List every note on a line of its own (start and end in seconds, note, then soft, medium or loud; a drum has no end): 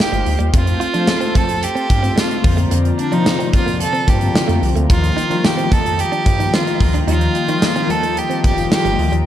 0.00 0.56 A#3 medium
0.00 0.49 D#4 medium
0.00 0.56 D#4 medium
0.00 0.55 F4 medium
0.00 0.37 G4 medium
0.00 0.49 G4 medium
0.00 0.56 G4 medium
0.00 4.86 C5 medium
0.00 0.55 D#5 medium
0.00 0.49 F5 medium
0.00 snare loud
0.00 tambourine medium
0.12 0.23 G1 loud
0.12 0.22 G3 medium
0.12 closed hi-hat soft
0.26 0.37 D2 medium
0.26 muted clean electric guitar stroke soft
0.26 open hi-hat medium
0.39 0.50 D#2 medium
0.39 0.49 G3 medium
0.39 closed hi-hat medium
0.53 0.74 F2 loud
0.53 0.83 A3 medium
0.53 0.84 C4 medium
0.53 4.86 F4 medium
0.53 1.38 F4 medium
0.53 0.84 F4 medium
0.53 2.43 A4 medium
0.53 2.43 A5 medium
0.53 kick loud
0.53 closed hi-hat loud
0.66 muted clean electric guitar stroke soft
0.66 closed hi-hat medium
0.80 0.90 F4 medium
0.80 closed hi-hat medium
0.94 1.15 F3 loud
0.94 1.74 A3 medium
0.94 1.74 C4 medium
0.94 1.03 D4 medium
0.94 1.75 F4 medium
0.94 closed hi-hat medium
1.07 snare loud
1.07 tambourine medium
1.20 1.30 C4 medium
1.20 closed hi-hat soft
1.35 1.66 F2 medium
1.35 1.44 A3 medium
1.35 1.65 A4 loud
1.35 kick medium
1.35 closed hi-hat medium
1.49 closed hi-hat medium
1.63 2.21 G4 loud
1.63 closed hi-hat medium
1.75 1.85 C4 medium
1.75 closed hi-hat soft
1.89 2.10 G2 medium
1.89 muted clean electric guitar stroke soft
1.89 kick loud
1.89 closed hi-hat medium
2.03 2.44 A3 medium
2.03 2.12 C4 medium
2.03 2.44 C4 medium
2.03 2.44 F4 medium
2.03 closed hi-hat medium
2.16 2.26 G3 medium
2.16 2.59 F4 medium
2.16 snare loud
2.16 tambourine medium
2.30 muted clean electric guitar stroke soft
2.30 closed hi-hat medium
2.44 2.65 F2 loud
2.44 2.99 D3 medium
2.44 2.99 F3 medium
2.44 2.99 A#3 medium
2.44 2.99 C4 medium
2.44 2.99 F4 medium
2.44 4.88 D5 medium
2.44 9.22 A#5 medium
2.44 kick loud
2.44 open hi-hat medium
2.57 2.67 A3 medium
2.57 closed hi-hat medium
2.71 2.92 F2 loud
2.71 2.81 A#3 medium
2.71 closed hi-hat medium
2.85 closed hi-hat medium
2.98 3.15 D4 medium
2.98 muted clean electric guitar stroke soft
2.98 closed hi-hat medium
3.12 3.92 C3 medium
3.12 3.33 F3 loud
3.12 3.92 F3 medium
3.12 3.92 A#3 medium
3.12 3.92 C4 medium
3.12 3.22 D4 medium
3.12 3.54 D#4 medium
3.12 3.92 F4 medium
3.12 closed hi-hat medium
3.26 snare loud
3.26 tambourine medium
3.39 3.49 C4 medium
3.39 closed hi-hat medium
3.53 3.84 F2 loud
3.53 3.79 F4 medium
3.53 muted clean electric guitar stroke soft
3.53 kick medium
3.53 closed hi-hat medium
3.66 3.76 A#3 medium
3.66 closed hi-hat medium
3.80 4.11 A4 loud
3.80 muted clean electric guitar stroke soft
3.80 closed hi-hat medium
3.93 4.03 C4 medium
3.93 closed hi-hat soft
4.07 4.28 G2 medium
4.07 4.17 A#3 medium
4.07 4.63 G4 loud
4.07 kick medium
4.07 closed hi-hat medium
4.21 4.71 D3 medium
4.21 4.71 F3 medium
4.21 4.71 A#3 medium
4.21 4.72 C4 medium
4.21 4.72 F4 medium
4.21 closed hi-hat medium
4.35 snare loud
4.35 tambourine medium
4.48 4.59 F2 medium
4.48 4.58 A3 medium
4.48 closed hi-hat medium
4.62 4.73 C2 loud
4.62 muted clean electric guitar stroke soft
4.62 open hi-hat medium
4.76 4.86 D2 loud
4.76 4.85 A3 medium
4.76 closed hi-hat medium
4.89 5.10 D#2 loud
4.89 5.19 D#3 medium
4.89 5.19 F3 medium
4.89 5.20 G3 medium
4.89 5.20 A#3 medium
4.89 9.26 F4 medium
4.89 5.46 F4 loud
4.89 5.20 F4 medium
4.89 9.22 D#5 medium
4.89 9.22 G5 medium
4.89 kick loud
4.89 closed hi-hat medium
5.03 muted clean electric guitar stroke soft
5.03 closed hi-hat medium
5.17 5.26 D#4 medium
5.17 closed hi-hat medium
5.30 6.10 D#3 medium
5.30 5.51 D#3 loud
5.30 6.10 F3 medium
5.30 6.10 G3 medium
5.30 6.10 A#3 medium
5.30 5.40 D4 medium
5.30 6.11 F4 medium
5.30 closed hi-hat medium
5.44 5.74 G4 medium
5.44 muted clean electric guitar stroke soft
5.44 snare loud
5.44 tambourine medium
5.57 5.67 C4 medium
5.57 closed hi-hat soft
5.71 6.02 F2 loud
5.71 5.81 A#3 medium
5.71 6.01 A4 loud
5.71 kick medium
5.71 closed hi-hat medium
5.86 closed hi-hat medium
5.99 6.56 G4 loud
5.99 closed hi-hat medium
6.12 6.22 D4 medium
6.12 closed hi-hat soft
6.26 6.47 G2 medium
6.26 muted clean electric guitar stroke soft
6.26 kick loud
6.26 closed hi-hat medium
6.39 6.89 D#3 medium
6.39 6.89 F3 medium
6.39 6.90 G3 medium
6.39 6.90 A#3 medium
6.39 6.49 D#4 medium
6.39 6.90 F4 medium
6.39 closed hi-hat medium
6.54 6.63 C4 medium
6.54 6.95 F4 medium
6.54 snare loud
6.54 tambourine medium
6.67 muted clean electric guitar stroke soft
6.67 closed hi-hat medium
6.80 7.01 D2 medium
6.80 kick medium
6.80 open hi-hat medium
6.94 7.04 D4 medium
6.94 closed hi-hat medium
7.07 7.28 D#2 loud
7.07 7.37 D#3 medium
7.07 7.37 F3 medium
7.07 7.38 G3 medium
7.07 7.38 A#3 medium
7.07 7.17 D#4 medium
7.07 7.38 F4 medium
7.07 7.92 F4 loud
7.07 closed hi-hat loud
7.21 closed hi-hat medium
7.35 muted clean electric guitar stroke soft
7.35 closed hi-hat medium
7.48 8.28 D#3 medium
7.48 7.69 D#3 loud
7.48 8.28 F3 medium
7.48 8.28 G3 medium
7.48 8.28 A#3 medium
7.48 7.58 D#4 medium
7.48 8.29 F4 medium
7.48 closed hi-hat medium
7.62 snare loud
7.62 tambourine medium
7.76 7.85 C4 medium
7.76 closed hi-hat medium
7.89 8.20 D#2 loud
7.89 8.20 A4 loud
7.89 muted clean electric guitar stroke medium
7.89 closed hi-hat medium
8.03 8.13 A#3 medium
8.03 closed hi-hat medium
8.16 8.45 G4 loud
8.16 muted clean electric guitar stroke soft
8.16 closed hi-hat medium
8.30 8.39 C4 medium
8.30 closed hi-hat medium
8.43 8.65 F1 medium
8.43 8.53 A#3 medium
8.43 8.70 G4 loud
8.43 kick medium
8.43 closed hi-hat medium
8.57 9.07 D#3 medium
8.57 9.07 F3 medium
8.57 9.08 G3 medium
8.57 9.08 A#3 medium
8.57 9.08 F4 medium
8.57 closed hi-hat medium
8.72 9.10 G4 loud
8.72 snare loud
8.72 tambourine medium
8.85 8.95 G1 loud
8.85 8.94 G3 medium
8.85 closed hi-hat soft
8.98 9.09 D2 loud
8.98 muted clean electric guitar stroke soft
8.98 open hi-hat medium
9.12 9.23 D#2 medium
9.12 9.22 G3 medium
9.12 closed hi-hat medium